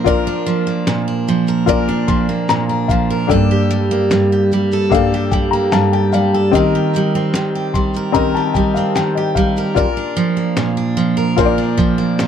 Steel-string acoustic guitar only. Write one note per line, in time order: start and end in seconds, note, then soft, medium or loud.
0.00 0.45 F3 medium
0.00 0.66 A#3 medium
0.00 0.27 D4 medium
0.07 0.86 A#2 medium
0.07 1.48 A#4 medium
0.27 1.07 D4 medium
0.46 1.27 F3 medium
0.67 2.28 A#3 medium
0.87 1.67 A#2 medium
1.08 1.88 D4 medium
1.28 2.07 F3 medium
1.48 1.69 A#4 medium
1.69 2.49 A#2 medium
1.69 3.10 A#4 medium
1.89 2.69 D4 medium
2.08 2.89 F3 medium
2.29 3.91 A#3 medium
2.50 3.30 A#2 medium
2.69 3.51 D4 medium
2.91 3.38 F3 medium
3.10 3.31 A#4 medium
3.31 4.10 G2 medium
3.31 4.72 A4 medium
3.51 4.32 G4 medium
3.71 4.52 G3 medium
3.91 5.53 A#3 medium
4.11 4.92 G2 medium
4.32 5.13 G4 medium
4.53 5.33 G3 medium
4.73 4.92 A4 medium
4.94 5.72 G2 medium
4.94 6.33 A4 medium
5.14 5.93 G4 medium
5.33 6.13 G3 medium
5.53 7.15 A#3 medium
5.73 6.62 G2 medium
5.93 6.75 G4 medium
6.14 6.96 G3 medium
6.34 6.54 A4 medium
6.55 7.34 D#3 medium
6.55 7.96 A#4 medium
6.75 7.54 G4 medium
6.96 7.74 G3 medium
7.15 8.76 C4 medium
7.35 8.13 D#3 medium
7.55 8.36 G4 medium
7.75 8.55 G3 medium
7.96 8.15 A#4 medium
8.14 8.95 D#3 medium
8.14 9.57 A#4 medium
8.37 9.16 G4 medium
8.56 9.36 G3 medium
8.77 9.86 C4 medium
8.97 9.85 D#3 medium
9.17 9.86 G4 medium
9.37 9.85 G3 medium
9.58 9.77 A#4 medium
9.77 10.56 A#2 medium
9.77 11.16 A#4 medium
9.97 10.77 D4 medium
10.17 10.96 F3 medium
10.37 11.98 A#3 medium
10.57 11.37 A#2 medium
10.77 11.58 D4 medium
10.97 11.76 F3 medium
11.17 11.38 A#4 medium
11.38 12.19 A#2 medium
11.38 12.28 A#4 medium
11.58 12.28 D4 medium
11.77 12.28 F3 medium
11.98 12.28 A#3 medium
12.20 12.28 A#2 medium